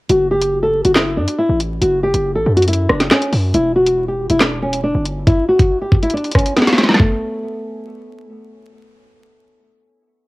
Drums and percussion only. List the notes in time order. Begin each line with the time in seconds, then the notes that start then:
0.09 closed hi-hat
0.41 closed hi-hat
0.85 closed hi-hat
0.95 snare, clap, closed hi-hat
1.28 closed hi-hat
1.60 closed hi-hat
1.82 closed hi-hat
2.14 closed hi-hat
2.57 closed hi-hat
2.63 closed hi-hat
2.68 closed hi-hat
2.73 closed hi-hat
2.90 cross-stick
3.00 snare, closed hi-hat
3.11 snare, clap, closed hi-hat
3.22 closed hi-hat
3.33 open hi-hat
3.54 closed hi-hat
3.87 closed hi-hat
4.30 closed hi-hat
4.41 snare, clap, closed hi-hat
4.73 closed hi-hat
5.05 closed hi-hat
5.27 kick, closed hi-hat
5.59 kick, closed hi-hat
5.92 kick
6.03 closed hi-hat
6.10 closed hi-hat
6.17 closed hi-hat
6.24 closed hi-hat
6.31 kick, cross-stick, closed hi-hat
6.38 closed hi-hat
6.46 closed hi-hat
6.56 snare, closed hi-hat
6.62 snare
6.67 snare, closed hi-hat
6.73 snare
6.78 snare, closed hi-hat
6.83 snare
6.89 snare
6.94 snare
7.00 kick